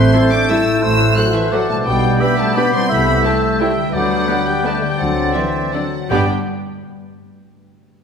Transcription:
Already playing: A2 A3 C4 E4 G4 B4 E5 C6 G6
0.13 G3 E4 A4 E5
0.31 D4 D6
0.48 G3 E4 A4 E5 E6
0.65 A2
0.69 A3
0.74 C4
0.78 E4 F#4
0.82 A1 A2 C5 E6 F#6
1.16 F#3 F#4 A4 C5 F#6
1.33 E3 E5
1.52 F#3 F#4 A4 C5 D5 F#5
1.68 B2 A3 A5
1.72 G3
1.77 D4
1.81 B4
1.85 B1 B2 G3 B3 D5 G5 G6
2.20 G3 B3 D4 G4 B4 E5 B5
2.38 A3 A5
2.55 G3 B3 D4 G4 B4 D5 B5
2.72 C3 C4 C6
2.76 G3
2.81 E4
2.85 A4 E5
2.90 C2 C3 A3 B3 B5
3.24 A3 C4 E4 G4 A4 A5
3.59 G3 C4 E4 G4 A4 E5 G5
3.76 D3
3.80 G3
3.85 D4
3.89 B4 D5
3.94 D2 D3 F#3 B3 D5 F#5 G6
4.27 B3 D4 G4 B4 D5
4.46 G3 G5
4.63 A3 B3 D4 G4 D5 A5
4.81 D3 G3 G5
4.86 A3
4.90 D4
4.95 C5 A6
4.99 D2 D3 F#3 C4 F#5
5.34 E3 C4 D4 A4 C5 D5 E5
5.72 F#3 C4 D4 A4 D5 F#5
6.08 G1 G2 G3 B3 D4 G4 B4 D5 G5 D6
6.13 D5

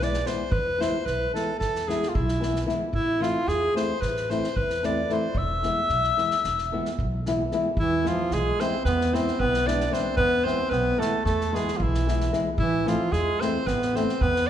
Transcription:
Already playing: B1
0.00 E3 G#3 B3 E4 D5, snare
0.14 snare
0.25 E3 G#3 B3 E4 C5, snare
0.51 E2 B4, kick
0.78 E3 G#3 B3 E4 C5, snare
1.06 B1 B4, snare
1.34 E3 G#3 B3 E4 A4, snare
1.59 E2 A4, kick, snare
1.76 snare
1.88 E3 G#3 B3 E4 G#4, snare
2.03 snare
2.08 F4
2.14 B1 E4, kick
2.28 snare
2.40 E3 G#3 B3 E4, snare
2.56 snare
2.66 E3 G#3 B3 E4, snare
2.93 A1 E4, kick
3.20 E3 A3 C4 E4 F4, snare
3.47 E2 G#4, snare
3.74 E3 A3 C4 E4 C5, snare
4.01 A1 B4, kick, snare
4.17 snare
4.30 E3 A3 C4 E4 C5, snare
4.44 snare
4.57 E2 B4, kick
4.70 snare
4.83 E3 A3 C4 E4 D5, snare
5.09 E3 A3 C4 E4 C5, snare
5.35 E1 E5, kick
5.63 E3 G#3 B3 E4, snare
5.89 B1, snare
6.04 snare
6.17 E3 G#3 B3 E4, snare
6.31 snare
6.44 E1, snare
6.58 snare
6.72 E3 G#3 B3 E4
6.85 snare
6.99 B1, kick
7.26 E3 G#3 B3 E4, snare
7.52 E3 G#3 B3 E4, snare
7.77 E2 E3 E4, kick
8.04 E3 G#3 B3 E4 F4, snare
8.09 F3
8.31 B1 G#3 G#4, snare
8.59 E3 G#3 B3 C4 E4 C5, snare
8.85 E2 B3 B4, kick, snare
9.01 snare
9.13 E3 G#3 B3 C4 E4 C5, snare
9.28 snare
9.40 B1 B3 B4, kick
9.54 snare
9.66 E3 G#3 B3 D4 E4 D5, snare
9.80 snare
9.90 E3 G#3 B3 C4 E4 C5, snare
10.16 E2 B3 B4, kick
10.44 E3 G#3 B3 C4 E4 C5, snare
10.70 B1 B3 B4, snare
10.98 E3 G#3 A3 B3 E4 A4, snare
11.25 E2 A3 A4, kick, snare
11.41 snare
11.52 E3 G#3 B3 E4 G#4, snare
11.68 snare
11.73 F3 F4
11.80 B1 E3 E4, kick
11.94 snare
12.06 E3 G#3 B3 E4, snare
12.20 snare
12.32 E3 G#3 B3 E4, snare
12.58 A1 E3 E4, kick
12.86 E3 F3 A3 C4 E4 F4, snare
13.11 E2 G#3 G#4, snare
13.40 E3 A3 C4 E4 C5, snare
13.67 A1 B3 B4, kick, snare
13.82 snare
13.94 E3 A3 C4 E4 C5, snare
14.09 snare
14.21 E2 B3 B4, kick
14.36 snare
14.47 D5

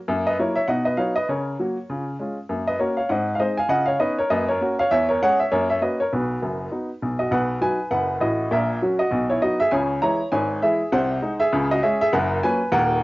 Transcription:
0.08 F#2 A#3
0.27 B4 D#5
0.39 F#3 A#3 E4 A#4 C#5
0.55 C#5 E5
0.68 B2 D#4 D#5 F#5
0.85 B4 D#5
0.97 F#3 B3 D#4 C#5 F5
1.16 B4 D#5
1.29 C#3 A#4 C#5
1.60 F#3 A#3 F#4
1.90 C#3 F4
2.19 G#3 C#4 F4
2.49 F#2 A#3
2.68 B4 D#5
2.79 A#3 C#4 F#4 A#4 C#5
2.97 C#5 F5
3.09 G#2 C4 D#5 F#5
3.35 F5
3.40 G#3 C4 D#4 C5 D#5
3.58 F5 G#5
3.69 C#3 F4 D#5 F#5
3.86 C#5 F5
3.99 B3 C#4 D#4 B4 D#5
4.19 A#4 C#5
4.30 F#2 A#3 B4 D#5
4.48 A#4 C#5
4.61 A#3 C#4 F#4
4.79 C#5 F5
4.91 E2 C#5 E5
5.09 A#4 C#5
5.22 G#3 C#4 G#4 C#5 F#5
5.40 C#5 E5
5.52 F#2 A#3 A#4 C#5
5.70 C#5 E5
5.81 A#3 C#4 F#4 B4 D#5
6.00 A#4 C#5
6.13 B1 B2 F#4 B4
6.42 F#1 F#2
6.71 B3 D#4 F#4
7.02 B1 B2
7.19 F#4 D#5
7.31 B1 B2 B4 F#5
7.61 F#3 D#4 F#4 B4 G#5
7.91 F#1 F#2 B4 F#5
8.21 A1 A2 F#4 D#5
8.51 A#1 A#2 A#4 E5
8.82 F#3 C#4 F#4
8.99 F#4 D#5
9.11 B1 B2
9.30 E4 C#5
9.42 F#3 B3 D#4 F#4 D#5
9.60 G#4 E5
9.71 C#2 C#3 C#5 G#5
10.02 E3 G#3 E4 C#5 A#5
10.32 G#1 G#2 C#5 G#5
10.62 E3 G#3 E4 G#4 E5
10.92 C2 C3 C5 F#5
11.22 G#3 D#4
11.40 G#4 E5
11.53 C#2 C#3
11.71 F#4 D#5
11.83 G#3 C#4 G#4 E5
12.01 G#4 E5
12.13 F#1 F#2 A#4 F#5
12.43 F#3 A#3 C#4 B4 G#5
12.72 D#1 D#2 A#4 F#5

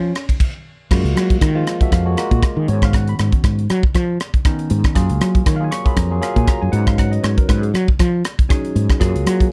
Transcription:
Already playing: F3 C#4
0.15 cross-stick, ride
0.29 kick, ride
0.40 kick, crash
0.91 F#2 G#3 A#3 F4 F#4, kick, cross-stick, crash
1.04 C#2, closed hi-hat
1.15 F#3, cross-stick, closed hi-hat
1.30 kick, closed hi-hat
1.41 D#3, kick, cross-stick, closed hi-hat
1.55 F3 G#3 A#3 F4
1.67 cross-stick, closed hi-hat
1.80 F3 G#3 A#3 F#4 E5, muted fretless electric bass stroke, kick, closed hi-hat
1.92 F2 F5, kick, cross-stick, closed hi-hat
2.05 F3 G#3 A#3 F#4 C#5
2.17 G#3 A#3 F4 F#4 A#4, cross-stick, closed hi-hat
2.31 A#2 F#4, kick, closed hi-hat
2.43 F4, kick, cross-stick, closed hi-hat
2.57 D#3 G#4
2.67 G#2 D#3 B3 C#4 F#4 C#5, closed hi-hat
2.82 F5, kick, cross-stick, closed hi-hat
2.93 F#5, kick, cross-stick, closed hi-hat
3.08 B5, closed hi-hat
3.19 G#2, cross-stick, closed hi-hat
3.32 kick, closed hi-hat
3.44 G#2, kick, cross-stick, closed hi-hat
3.59 closed hi-hat
3.70 F#3, cross-stick, closed hi-hat
3.83 kick
3.95 F3, kick, cross-stick, closed hi-hat
4.20 cross-stick, closed hi-hat
4.34 kick, closed hi-hat
4.45 D#3 B3 C#4 D#4, kick, cross-stick, closed hi-hat
4.59 closed hi-hat
4.70 G#2, closed hi-hat
4.84 kick, cross-stick, closed hi-hat
4.94 F#2 F#3 A#3 F4 G#4, kick, cross-stick, closed hi-hat
5.10 C#2, closed hi-hat
5.21 F#3, cross-stick, closed hi-hat
5.35 kick, closed hi-hat
5.46 D#3 C#5, kick, cross-stick, closed hi-hat
5.56 F#3 A#3 F5
5.60 F4 G#4 G#5
5.71 C#6, cross-stick, closed hi-hat
5.84 F#3 A#3 F4 G#4 B5, muted fretless electric bass stroke, kick, closed hi-hat
5.97 F2 A#5, kick, cross-stick, closed hi-hat
6.11 F#3 A#3 F4 G#4 C#5
6.21 F#3 A#3 F4 G#4 F5, cross-stick, closed hi-hat
6.36 A#2 G#5, kick, closed hi-hat
6.48 A#5, kick, cross-stick, closed hi-hat
6.62 F#2 G#5
6.72 G#2 F#3 C#4 D#4 B4 F#5, closed hi-hat
6.87 F5, kick, cross-stick, closed hi-hat
6.98 F#5, kick, cross-stick, closed hi-hat
7.11 D#5, closed hi-hat
7.23 G#2 C#5, cross-stick, closed hi-hat
7.38 A#4, kick, closed hi-hat
7.48 G#2 B4, kick, cross-stick, closed hi-hat
7.61 G#4, closed hi-hat
7.74 F#3, cross-stick, closed hi-hat
7.88 kick
7.99 F3, kick, cross-stick, closed hi-hat
8.25 cross-stick, closed hi-hat
8.39 kick, closed hi-hat
8.49 F#3 C#4 D#4 G#4 G#5, kick, cross-stick, closed hi-hat
8.65 closed hi-hat
8.76 G#2, closed hi-hat
8.90 kick, cross-stick, closed hi-hat
9.00 F#2 F#3 A#3 F4 G#4, kick, cross-stick, closed hi-hat
9.15 C#2, closed hi-hat
9.26 F#3, cross-stick, closed hi-hat
9.40 kick, closed hi-hat

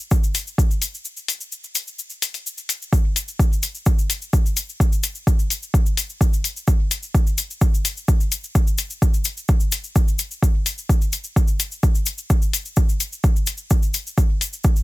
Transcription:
0.11 kick, cabasa
0.24 cabasa
0.35 open hi-hat, cabasa
0.47 cabasa
0.58 kick, cabasa
0.71 cabasa
0.82 open hi-hat, cabasa
0.94 cabasa
1.05 cabasa
1.17 cabasa
1.28 open hi-hat, cabasa
1.41 cabasa
1.52 cabasa
1.64 cabasa
1.75 open hi-hat, cabasa
1.87 cabasa
1.99 cabasa
2.10 cabasa
2.22 open hi-hat, cabasa
2.34 open hi-hat, cabasa
2.46 cabasa
2.58 cabasa
2.69 open hi-hat, cabasa
2.82 cabasa
2.93 kick, cabasa
3.16 open hi-hat, cabasa
3.28 cabasa
3.39 kick, cabasa
3.53 cabasa
3.63 open hi-hat, cabasa
3.75 cabasa
3.86 kick, cabasa
3.99 cabasa
4.10 open hi-hat, cabasa
4.22 cabasa
4.33 kick, cabasa
4.46 cabasa
4.57 open hi-hat, cabasa
4.69 cabasa
4.80 kick, cabasa
4.92 cabasa
5.03 open hi-hat, cabasa
5.15 cabasa
5.27 kick, cabasa
5.39 cabasa
5.50 open hi-hat, cabasa
5.63 cabasa
5.74 kick, cabasa
5.86 cabasa
5.97 open hi-hat, cabasa
6.09 cabasa
6.21 kick, cabasa
6.33 cabasa
6.44 open hi-hat, cabasa
6.57 cabasa
6.67 kick, cabasa
6.91 open hi-hat, cabasa
7.03 cabasa
7.14 kick, cabasa
7.27 cabasa
7.38 open hi-hat, cabasa
7.51 cabasa
7.61 kick, cabasa
7.74 cabasa
7.85 open hi-hat, cabasa
7.97 cabasa
8.08 kick, cabasa
8.20 cabasa
8.32 open hi-hat, cabasa
8.44 cabasa
8.55 kick, cabasa
8.67 cabasa
8.78 open hi-hat, cabasa
8.90 cabasa
9.02 kick, cabasa
9.14 cabasa
9.24 open hi-hat, cabasa
9.37 cabasa
9.48 kick, cabasa
9.60 cabasa
9.72 open hi-hat, cabasa
9.84 cabasa
9.96 kick, cabasa
10.08 cabasa
10.19 open hi-hat, cabasa
10.31 cabasa
10.43 kick, cabasa
10.66 open hi-hat, cabasa
10.78 cabasa
10.89 kick, cabasa
11.02 cabasa
11.12 open hi-hat, cabasa
11.24 cabasa
11.36 kick, cabasa
11.48 cabasa
11.60 open hi-hat, cabasa
11.72 cabasa
11.83 kick, cabasa
11.95 cabasa
12.06 open hi-hat, cabasa
12.18 cabasa
12.30 kick, cabasa
12.42 cabasa
12.53 open hi-hat, cabasa
12.65 cabasa
12.76 kick, cabasa
12.89 cabasa
13.00 open hi-hat, cabasa
13.13 cabasa
13.24 kick, cabasa
13.36 cabasa
13.47 open hi-hat, cabasa
13.57 cabasa
13.70 kick, cabasa
13.83 cabasa
13.94 open hi-hat, cabasa
14.07 cabasa
14.18 kick, cabasa
14.41 open hi-hat, cabasa
14.53 cabasa
14.64 kick, cabasa
14.76 cabasa

